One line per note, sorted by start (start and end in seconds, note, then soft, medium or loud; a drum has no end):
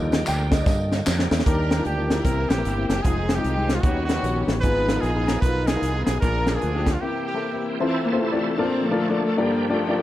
0.00 0.22 D#2 loud
0.00 1.43 D3 medium
0.00 1.42 F3 medium
0.00 1.42 G3 medium
0.00 1.43 A#3 medium
0.00 1.44 G4 medium
0.00 0.30 D#5 medium
0.12 snare loud
0.12 closed hi-hat medium
0.12 tambourine soft
0.26 0.62 D2 medium
0.26 0.53 G5 medium
0.26 clap medium
0.26 closed hi-hat medium
0.26 tambourine medium
0.52 0.62 D#5 medium
0.52 kick medium
0.52 snare loud
0.52 closed hi-hat medium
0.52 tambourine medium
0.62 0.67 D5 medium
0.66 1.00 G2 loud
0.66 1.04 D#5 medium
0.66 kick loud
0.66 snare medium
0.66 tambourine medium
0.92 snare medium
0.92 tambourine soft
1.06 1.28 F2 medium
1.06 snare medium
1.06 clap loud
1.06 tambourine loud
1.19 snare medium
1.31 1.44 E2 loud
1.31 snare medium
1.31 tambourine soft
1.39 snare medium
1.46 1.80 D#2 loud
1.46 2.07 D#3 medium
1.46 2.24 G3 medium
1.46 2.24 A#3 medium
1.46 1.72 A#3 medium
1.46 2.24 D4 medium
1.46 2.21 D4 medium
1.46 1.72 D4 medium
1.46 1.72 D#4 medium
1.46 2.24 G4 medium
1.46 1.72 G4 medium
1.46 1.85 G4 medium
1.46 1.83 A#4 medium
1.46 kick medium
1.46 closed hi-hat medium
1.71 snare medium
1.71 closed hi-hat medium
1.79 1.91 A#3 medium
1.79 1.91 D4 medium
1.79 1.91 D#4 medium
1.79 1.91 F4 medium
1.85 2.19 D2 medium
1.85 2.23 G4 medium
1.85 2.09 G4 medium
1.85 closed hi-hat medium
1.97 2.19 A#3 medium
1.97 2.19 D4 medium
1.97 2.19 D#4 medium
1.97 2.19 F4 medium
2.10 2.49 E4 medium
2.10 2.48 G4 medium
2.10 2.47 A#4 medium
2.10 snare medium
2.10 closed hi-hat medium
2.24 2.46 C2 medium
2.24 2.85 C3 soft
2.24 3.04 E3 soft
2.24 2.51 A#3 medium
2.24 3.04 A#3 soft
2.24 2.51 C4 medium
2.24 3.02 C4 soft
2.24 2.51 E4 medium
2.24 2.51 G4 medium
2.24 3.04 G4 medium
2.24 2.51 A#4 medium
2.24 kick loud
2.24 closed hi-hat medium
2.49 2.63 A#1 medium
2.49 3.01 A#3 medium
2.49 3.01 E4 medium
2.49 2.88 G4 medium
2.49 2.87 G4 medium
2.49 snare loud
2.49 closed hi-hat medium
2.57 2.70 A#3 medium
2.57 2.70 C4 medium
2.57 2.70 E4 medium
2.57 2.70 A#4 medium
2.65 2.86 G1 medium
2.65 closed hi-hat medium
2.78 2.98 A#3 medium
2.78 2.98 C4 medium
2.78 2.99 E4 soft
2.78 2.98 G4 medium
2.88 3.02 F#1 medium
2.88 3.04 G4 medium
2.88 snare medium
2.88 closed hi-hat medium
3.02 3.38 F1 medium
3.02 3.82 D#3 medium
3.02 3.82 G#3 medium
3.02 3.30 G#3 medium
3.02 3.82 C4 soft
3.02 3.30 C4 medium
3.02 3.37 C4 medium
3.02 3.30 D#4 medium
3.02 3.37 D#4 medium
3.02 3.82 F4 medium
3.02 3.30 F4 medium
3.02 3.36 G#4 medium
3.02 kick medium
3.02 closed hi-hat medium
3.29 snare medium
3.29 closed hi-hat soft
3.35 3.49 G#3 medium
3.35 3.50 C4 medium
3.35 3.81 C4 medium
3.35 3.49 D#4 medium
3.35 3.81 D#4 medium
3.35 3.50 F4 medium
3.35 3.76 G4 medium
3.44 3.78 C2 medium
3.44 closed hi-hat medium
3.56 3.77 G#3 medium
3.56 3.78 C4 soft
3.56 3.77 D#4 medium
3.56 3.78 G4 medium
3.69 snare medium
3.69 closed hi-hat medium
3.75 3.83 F4 medium
3.75 3.84 F4 medium
3.81 4.18 D#2 medium
3.81 4.62 D#3 medium
3.81 4.45 D#3 medium
3.81 4.10 B3 medium
3.81 4.60 B3 medium
3.81 4.10 B3 medium
3.81 4.61 C#4 soft
3.81 4.10 C#4 medium
3.81 4.10 D#4 medium
3.81 4.05 F#4 medium
3.81 4.08 F#4 medium
3.81 3.90 F#4 soft
3.81 4.10 G4 medium
3.81 kick loud
3.81 closed hi-hat medium
3.85 4.64 G3 medium
3.85 4.09 C#4 medium
4.06 4.44 F#4 medium
4.06 4.46 F#4 medium
4.06 snare medium
4.06 closed hi-hat medium
4.10 4.61 B3 medium
4.10 4.60 C#4 medium
4.15 4.28 B3 medium
4.15 4.29 C#4 medium
4.15 4.29 D#4 medium
4.15 4.29 G4 medium
4.23 4.44 A#1 medium
4.23 closed hi-hat medium
4.36 4.57 B3 medium
4.36 4.57 C#4 medium
4.36 4.57 D#4 soft
4.36 4.57 G4 medium
4.48 4.61 A1 medium
4.48 snare medium
4.48 closed hi-hat medium
4.61 4.97 G#1 medium
4.61 5.24 G#2 medium
4.61 6.18 F3 medium
4.61 6.18 B3 medium
4.61 4.89 B3 medium
4.61 6.18 D#4 medium
4.61 4.89 D#4 medium
4.61 5.40 D#4 medium
4.61 4.90 F4 medium
4.61 6.18 G#4 medium
4.61 4.89 G#4 medium
4.61 5.02 B4 loud
4.61 5.00 B4 loud
4.61 kick medium
4.61 closed hi-hat medium
4.65 5.40 F4 medium
4.89 snare medium
4.89 closed hi-hat medium
4.95 5.08 B3 medium
4.95 5.08 D#4 medium
4.95 5.08 F4 medium
4.95 5.09 A#4 medium
5.01 5.37 A#1 medium
5.01 5.41 G#4 medium
5.01 5.27 G#4 medium
5.01 closed hi-hat medium
5.15 5.36 B3 medium
5.15 5.36 D#4 medium
5.15 5.37 F4 medium
5.15 5.37 G#4 medium
5.28 5.43 A#4 medium
5.28 snare medium
5.28 closed hi-hat medium
5.41 5.76 B1 medium
5.41 5.69 B3 medium
5.41 5.69 D#4 medium
5.41 6.19 D#4 medium
5.41 5.69 F4 medium
5.41 5.68 F4 medium
5.41 5.69 B4 medium
5.41 5.68 B4 medium
5.41 kick medium
5.41 closed hi-hat medium
5.45 5.70 A#4 medium
5.67 6.20 B3 medium
5.67 6.19 F4 medium
5.67 6.05 G#4 medium
5.67 6.07 G#4 medium
5.67 snare medium
5.67 closed hi-hat medium
5.75 5.88 B3 medium
5.75 5.88 D#4 medium
5.75 5.88 F4 medium
5.75 5.88 A#4 medium
5.82 6.03 C2 medium
5.82 closed hi-hat medium
5.95 6.16 B3 medium
5.95 6.16 D#4 soft
5.95 6.16 F4 soft
5.95 6.16 G#4 medium
6.05 6.20 B1 medium
6.05 6.20 G#4 medium
6.05 6.22 G#4 medium
6.05 snare medium
6.05 closed hi-hat medium
6.20 6.56 A#1 medium
6.20 6.83 A#2 medium
6.20 7.00 F3 medium
6.20 6.48 A#3 medium
6.20 7.01 A#3 medium
6.20 6.48 D4 medium
6.20 6.98 D4 medium
6.20 7.01 D4 medium
6.20 6.93 F4 medium
6.20 6.49 F4 medium
6.20 6.28 G4 soft
6.20 6.49 G#4 medium
6.20 6.56 A#4 medium
6.20 6.52 A#4 medium
6.20 kick medium
6.20 closed hi-hat medium
6.28 7.03 G#4 medium
6.47 snare medium
6.47 closed hi-hat soft
6.55 6.67 A#3 medium
6.55 6.67 D4 medium
6.55 6.68 F4 medium
6.55 6.74 G#4 medium
6.55 6.95 G#4 medium
6.55 6.68 A#4 medium
6.62 6.96 D2 medium
6.62 closed hi-hat medium
6.74 6.95 A#3 medium
6.74 6.95 D4 medium
6.74 6.95 F4 medium
6.74 6.94 G4 medium
6.74 6.96 G#4 medium
6.86 kick medium
6.86 snare medium
6.86 closed hi-hat medium
6.93 7.03 F4 medium
6.93 7.02 F4 medium
7.01 7.62 C3 medium
7.01 7.08 D#3 soft
7.01 7.27 A#3 medium
7.01 7.79 A#3 soft
7.01 7.24 A#3 medium
7.01 7.79 C4 soft
7.01 7.27 C4 medium
7.01 7.25 E4 medium
7.01 7.28 E4 medium
7.01 7.24 G4 medium
7.01 7.26 G4 medium
7.01 7.80 G4 medium
7.01 7.28 G4 medium
7.06 7.80 E3 medium
7.25 7.76 A#3 soft
7.25 7.77 E4 medium
7.25 7.62 G4 medium
7.25 7.63 G4 medium
7.34 7.46 A#3 medium
7.34 7.46 C4 medium
7.34 7.47 E4 medium
7.34 7.47 A4 medium
7.52 7.74 A#3 medium
7.52 7.74 C4 soft
7.52 7.74 E4 medium
7.52 7.74 G4 medium
7.80 8.19 E3 medium
7.80 8.58 E3 medium
7.80 8.19 A3 medium
7.80 8.58 A3 medium
7.80 8.06 C4 medium
7.80 8.04 C4 loud
7.80 8.59 C4 medium
7.80 8.06 E4 medium
7.80 8.58 E4 medium
7.80 8.06 F4 medium
7.80 8.58 A4 medium
7.80 8.06 A4 medium
7.80 8.06 C5 medium
8.06 8.20 A#3 medium
8.12 8.25 C4 medium
8.12 8.25 E4 medium
8.12 8.25 F4 medium
8.12 8.25 A4 medium
8.12 8.25 C5 medium
8.20 8.57 C3 medium
8.20 8.57 E3 medium
8.20 8.60 A3 medium
8.32 8.53 C4 medium
8.32 8.53 E4 medium
8.32 8.53 F4 medium
8.32 8.53 A4 medium
8.32 8.53 D5 medium
8.58 9.19 A#2 medium
8.58 9.36 F3 medium
8.58 8.84 F3 medium
8.58 9.37 A3 medium
8.58 8.84 A3 medium
8.58 8.85 C4 medium
8.58 8.84 D4 medium
8.58 9.36 D4 medium
8.58 8.85 F4 medium
8.58 8.84 A4 medium
8.58 9.37 A4 medium
8.58 8.85 A#4 medium
8.58 8.85 D5 medium
8.85 9.35 D3 medium
8.85 9.35 F3 medium
8.85 9.23 A3 loud
8.91 9.04 D4 medium
8.91 9.04 F4 medium
8.91 9.04 A4 medium
8.91 9.04 A#4 medium
8.91 9.04 D5 medium
9.09 9.31 D4 medium
9.09 9.31 F4 medium
9.09 9.31 A4 medium
9.09 9.31 A#4 medium
9.09 9.32 D5 medium
9.24 9.38 A3 medium
9.37 9.98 G2 medium
9.37 9.71 D3 medium
9.37 10.02 F3 medium
9.37 9.70 F3 medium
9.37 10.02 G3 medium
9.37 9.71 A#3 loud
9.37 9.63 D4 medium
9.37 10.02 D4 medium
9.37 9.63 F4 medium
9.37 9.64 G4 medium
9.37 10.02 G4 medium
9.37 9.64 A#4 medium
9.37 9.64 D5 medium
9.70 10.02 D3 medium
9.70 10.02 F3 medium
9.70 10.02 A3 loud
9.70 9.83 D4 medium
9.70 9.83 F4 medium
9.70 9.83 G4 medium
9.70 9.83 A#4 medium
9.70 9.83 D5 medium
9.89 10.02 D4 medium
9.89 10.02 F4 medium
9.89 10.02 G4 medium
9.89 10.02 A#4 medium
9.89 10.02 D5 medium